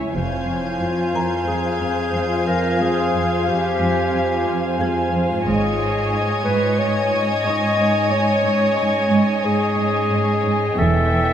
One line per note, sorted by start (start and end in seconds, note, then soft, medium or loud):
0.00 0.11 C#2 soft
0.00 0.10 E4 soft
0.00 0.15 E4 soft
0.00 0.11 C#5 soft
0.00 0.11 E5 soft
0.00 0.11 G#5 soft
0.14 0.78 F1 soft
0.14 5.42 F2 soft
0.14 0.35 F2 soft
0.14 5.43 F4 soft
0.14 5.46 C5 soft
0.14 5.43 C5 soft
0.14 5.43 F5 soft
0.14 5.47 F5 soft
0.14 5.43 G#5 soft
0.14 4.43 G6 soft
0.14 5.09 G#6 soft
0.48 0.68 F2 soft
0.80 1.02 F2 soft
0.80 1.44 F4 soft
1.15 1.35 F2 soft
1.15 3.11 A#4 soft
1.15 3.11 A#5 soft
1.48 1.68 F2 soft
1.48 2.49 G#4 soft
1.81 2.01 F2 soft
2.14 2.34 F2 soft
2.47 2.67 F2 soft
2.47 2.80 A#4 soft
2.80 3.01 F2 soft
2.80 3.46 G#4 soft
3.14 3.34 F2 soft
3.47 3.68 F2 soft
3.47 5.10 G4 medium
3.81 4.01 F2 soft
4.14 4.34 F2 soft
4.47 4.67 F2 soft
4.80 5.00 F2 soft
4.80 6.75 G#4 soft
4.80 6.76 G#6 soft
5.13 5.33 F2 soft
5.45 6.08 G#1 soft
5.45 5.67 G#2 soft
5.45 10.74 G#2 soft
5.45 6.41 G#4 medium
5.45 10.78 C#5 medium
5.45 10.78 C#5 soft
5.45 10.77 D#5 soft
5.45 10.74 D#5 soft
5.45 10.73 G#5 soft
5.45 10.74 G#5 soft
5.45 10.39 C#6 soft
5.45 9.07 G#6 soft
5.80 6.00 G#2 soft
6.12 6.33 G#2 soft
6.12 10.39 D#6 soft
6.45 6.66 G#2 medium
6.45 6.80 B4 medium
6.79 6.99 G#2 soft
6.79 7.47 C#5 medium
7.12 7.32 G#2 soft
7.45 7.66 G#2 soft
7.45 9.41 C#5 soft
7.45 8.13 D#5 medium
7.45 9.41 C#6 soft
7.79 7.98 G#2 soft
8.11 8.32 G#2 medium
8.11 9.47 C#5 medium
8.45 8.65 G#2 soft
8.77 8.98 G#2 soft
8.77 10.73 G#5 soft
9.11 9.31 G#2 medium
9.44 9.64 G#2 soft
9.44 10.80 G#4 medium
9.77 9.97 G#2 soft
10.11 10.31 G#2 medium
10.45 10.64 G#2 soft
10.77 11.33 E1 soft
10.77 10.97 E2 medium
10.77 11.33 E2 soft
10.77 11.33 A4 medium
10.77 11.33 E5 medium
10.77 11.33 G5 soft
11.11 11.31 E2 soft